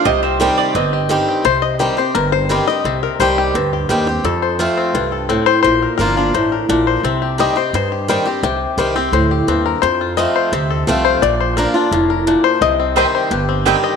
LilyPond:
<<
  \new Staff \with { instrumentName = "Mandolin" } { \time 4/4 \key c \dorian \tempo 4 = 172 ees''8 c''8 bes'8 d''8 ees''4.~ ees''16 r16 | r1 | r1 | r1 |
r1 | r1 | r1 | r1 |
r1 | r4 <c' g' ees'' g''>16 r4. r16 <c' g' ees'' g''>16 r8. | }
  \new Staff \with { instrumentName = "Five-string banjo" } { \time 4/4 \key c \dorian << { r1 | c''8 ees''8 g'4 bes'8 c''4 ees''8~ | ees''8 bes'8 c''8 g'4 r8 g'4 | a'4 r2 r8 c''8 |
c''4 bes'2~ bes'8 r8 | r4 ees''4 c''4 c''4 | g'2~ g'8 r4 bes'8 | c''4 ees''4 r4. c''8 |
d''4 bes'4 r4. c''8 | ees''4 c''4 r4. ees''8 | } \\ { g'8 c'8 g'8 g'8 c'8 g'8 g'8 g'8 | r4. c''4. g4 | c'4. r8 c'8 g'4 g'8 | r8 c''8 f'8 c'8 f'8 a'8 c'4 |
r8 bes'4 d'8 c''8 bes'8 d'8 c''8 | c'8 g'4 c''4 g'4 g'8~ | g'4 c''8 c'8 c''8 g'8 c'4 | r8 f'4 c''8 c'8 a'8 a4 |
r8 c''4 d'8 f'8 bes'8 d'4 | r8 c'4 c''8 g'8 c'8 g'4 | } >> }
  \new Staff \with { instrumentName = "Steel-string acoustic guitar" } { \time 4/4 \key c \dorian << { r4 <ees g c' g'>4 r4 <ees g c' g'>4 | r4 <ees g c' g'>8 <c' g'>8 r4 <ees g c' g'>8 <c' g'>8 | r4 <ees g c' g'>4 r4 <ees g c' g'>8 <c' g'>8 | r4 <f a c' f'>4 r2 |
r4 <f bes d' f'>8 <d' f'>8 r2 | r4 <ees g c' g'>8 <c' g'>8 r4 <ees g c' g'>8 <c' g'>8 | r4 <ees g c' g'>8 <c' g'>8 r2 | r4 <f a c' f'>4 r4 <f a c' f'>4 |
r4 <f bes d' f'>8 <d' f'>8 r2 | r4 <ees g c' g'>4 r4 <ees g c' g'>4 | } \\ { c2 g,2 | c2 g,2 | c2 g,2 | f,2 g,4 a,4 |
bes,2 a,4 bes,4 | c2 g,2 | c2 a,4 g,4 | f,2 c2 |
bes,2 a,4 bes,4 | c2 g,2 | } >> }
  \new Staff \with { instrumentName = "Upright bass" } { \clef bass \time 4/4 \key c \dorian c,2 g,,2 | c,2 g,,2 | c,4 c,4 d,4 ees,4 | f,2 c,2 |
bes,,4 g,,4 a,,4 bes,,4 | c,2 g,2 | c,4 c,4 d,4 ees,4 | f,2 d,4 c,4 |
bes,,2 f,,2 | c,2 g,,2 | }
>>